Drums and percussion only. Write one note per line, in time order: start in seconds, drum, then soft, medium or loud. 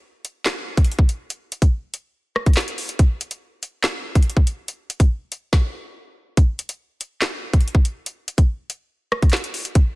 0.25 closed hi-hat medium
0.46 snare loud
0.46 clap medium
0.77 kick loud
0.77 closed hi-hat medium
0.84 closed hi-hat medium
0.92 closed hi-hat medium
0.99 kick loud
1.09 closed hi-hat medium
1.30 closed hi-hat medium
1.52 closed hi-hat medium
1.62 kick medium
1.62 closed hi-hat medium
1.94 closed hi-hat medium
2.36 cross-stick medium
2.46 kick medium
2.46 closed hi-hat soft
2.53 snare loud
2.53 clap loud
2.53 closed hi-hat medium
2.60 closed hi-hat medium
2.68 closed hi-hat medium
2.78 open hi-hat medium
2.89 closed hi-hat medium
2.99 kick loud
2.99 closed hi-hat medium
3.21 closed hi-hat medium
3.31 closed hi-hat medium
3.63 closed hi-hat medium
3.84 snare loud
3.84 clap medium
4.15 kick loud
4.15 closed hi-hat medium
4.23 closed hi-hat medium
4.30 closed hi-hat medium
4.37 kick loud
4.47 closed hi-hat medium
4.68 closed hi-hat medium
4.90 closed hi-hat medium
5.00 kick medium
5.00 closed hi-hat medium
5.32 closed hi-hat medium
5.53 kick loud
5.53 snare medium
6.37 kick loud
6.37 closed hi-hat medium
6.59 closed hi-hat medium
6.69 closed hi-hat medium
7.01 closed hi-hat medium
7.22 snare loud
7.22 clap medium
7.53 kick loud
7.53 closed hi-hat medium
7.61 closed hi-hat medium
7.68 closed hi-hat medium
7.75 kick loud
7.85 closed hi-hat medium
8.06 closed hi-hat medium
8.28 closed hi-hat medium
8.38 kick medium
8.38 closed hi-hat medium
8.70 closed hi-hat medium
9.12 cross-stick loud
9.22 kick loud
9.22 closed hi-hat soft
9.30 snare loud
9.30 clap loud
9.30 closed hi-hat medium
9.37 closed hi-hat medium
9.44 closed hi-hat medium
9.54 open hi-hat medium
9.65 closed hi-hat medium
9.75 kick loud
9.75 closed hi-hat medium